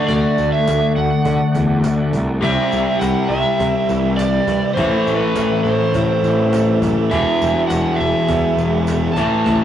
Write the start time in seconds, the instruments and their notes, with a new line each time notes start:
Already playing: overdriven electric guitar D3 A3 D4, tonewheel organ A3 D4 F#4 D5
0.07 picked electric bass D2, electric slide guitar D5, cajon bass, tambourine
0.38 picked electric bass D2, cajon slap, tambourine
0.52 electric slide guitar E5
0.67 picked electric bass D2, cajon slap, tambourine
0.96 picked electric bass D2, electric slide guitar F#5, cajon slap
1.25 picked electric bass D3, cajon bass, tambourine
1.55 picked electric bass E2, cajon bass, tambourine
1.84 picked electric bass D2, cajon slap, tambourine
2.13 picked electric bass C2, cajon bass, tambourine
2.41 picked electric bass C2, overdriven electric guitar C3 G3 C4, tonewheel organ C4 E4 G4 E5, electric slide guitar E5, cajon bass
2.72 picked electric bass C2, overdriven electric guitar G3, tambourine
2.99 picked electric bass C2, overdriven electric guitar C4, electric slide guitar F#5, cajon slap, tambourine
3.29 picked electric bass C2, overdriven electric guitar E4, electric slide guitar E5, cajon slap, tambourine
3.60 picked electric bass C3, overdriven electric guitar C4, cajon bass, tambourine
3.89 picked electric bass C2, overdriven electric guitar E3, cajon slap, tambourine
4.17 overdriven electric guitar G3, electric slide guitar D5, cajon slap, tambourine
4.47 picked electric bass G2, overdriven electric guitar E3, cajon bass, tambourine
4.74 picked electric bass A1, overdriven electric guitar A2 E3 A3, electric slide guitar C5, cajon bass
4.79 tonewheel organ C4 E4 A4 E5
5.06 picked electric bass A1, overdriven electric guitar A3, tambourine
5.17 electric slide guitar B4
5.35 picked electric bass A1, overdriven electric guitar C4, cajon slap, tambourine
5.64 picked electric bass A1, overdriven electric guitar E4, electric slide guitar C5, cajon slap, tambourine
5.93 picked electric bass A2, overdriven electric guitar C4, cajon bass, tambourine
6.22 picked electric bass A1, overdriven electric guitar E3, cajon slap, tambourine
6.53 overdriven electric guitar A3, cajon slap, tambourine
6.82 picked electric bass F#1, overdriven electric guitar E3, cajon bass, tambourine
7.11 picked electric bass E1, overdriven electric guitar E2 B2 E3, tonewheel organ B3 E4 G4 E5, electric slide guitar E5, cajon bass
7.41 picked electric bass E1, overdriven electric guitar G3, tambourine
7.67 picked electric bass E1, overdriven electric guitar B3, electric slide guitar F#5, cajon slap, tambourine
7.96 picked electric bass E1, overdriven electric guitar E4, electric slide guitar E5, cajon slap
8.01 tambourine
8.28 picked electric bass E2, overdriven electric guitar B3, cajon bass, tambourine
8.57 picked electric bass E1, overdriven electric guitar E3, cajon slap, tambourine
8.87 overdriven electric guitar G3, cajon slap, tambourine
9.13 picked electric bass A1, overdriven electric guitar A2 E3, tonewheel organ C4 E4 E5, electric slide guitar A5, cajon bass, tambourine
9.17 overdriven electric guitar A3, tonewheel organ A4
9.45 picked electric bass A1, overdriven electric guitar A2, cajon bass